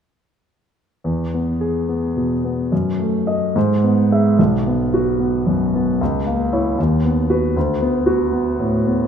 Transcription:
1.04 E2
1.34 B3
1.61 G#4
1.88 B3
2.17 B2
2.44 B3
2.72 F#2
2.99 A3
3.27 A4 D#5
3.56 G#2
3.83 B3
4.12 G#4 E5
4.39 B1
4.67 B3
4.94 F#4
5.19 B3
5.47 F#2
5.75 B3
6.01 C#2
6.26 A#3
6.53 E4 C#5
6.78 D#2
7.05 B3
7.30 F#4 B4
7.56 D2
7.82 B3
8.06 F#4
8.32 B3
8.59 A2
8.86 B3

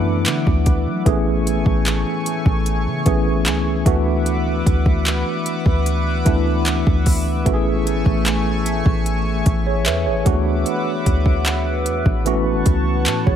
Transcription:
Already playing: F#2 E3 A3 B3 D4 E4 B4 E5 F#5 D6
0.26 D3, clap, closed hi-hat
0.47 D2, kick
0.66 kick, closed hi-hat
0.86 F#3
1.05 A1 E3 A3 B3 C#4 G#4 G#5 C#6, kick, closed hi-hat
1.47 closed hi-hat
1.66 A1, kick
1.86 clap, closed hi-hat
2.26 closed hi-hat
2.46 A1, kick
2.66 closed hi-hat
2.86 C#3
3.05 A1 E3 A3 B3 C#4 G#4, kick, closed hi-hat
3.46 C#2, clap, closed hi-hat
3.85 D2 E3 A3 B3 D4 F#4 B4 E5 F#5 D6, kick, closed hi-hat
4.26 closed hi-hat
4.66 D2, kick, closed hi-hat
4.86 kick
5.06 clap, closed hi-hat
5.46 closed hi-hat
5.66 D2, kick
5.86 closed hi-hat
6.25 D2 E3 A3 B3 D4 E4, kick, closed hi-hat
6.66 clap, closed hi-hat
6.87 D2, kick
7.06 kick, open hi-hat
7.45 A1 E3 A3 B3 C#4 F#4 G#5 C#6, kick, closed hi-hat
7.54 G#4
7.87 closed hi-hat
8.06 A1, kick
8.26 clap, closed hi-hat
8.66 closed hi-hat
8.86 A1, kick
9.06 closed hi-hat
9.46 A1, kick, closed hi-hat
9.67 G#4 C#5
9.86 E2 B4 E5, clap, closed hi-hat
10.06 A1 G#4 C#5
10.25 D2 E3 A3 B3 D4 F#4 B4 E5 F#5 D6, kick, closed hi-hat
10.66 closed hi-hat
11.06 D2, kick, closed hi-hat
11.26 kick
11.46 clap, closed hi-hat
11.86 E2, closed hi-hat
12.06 A1, kick
12.25 E3 A3 B3 C#4 F#4 F#5 A5 C#6, closed hi-hat
12.66 C#2, kick, closed hi-hat
13.06 A2, clap, closed hi-hat
13.26 A1 G#4 C#5, kick

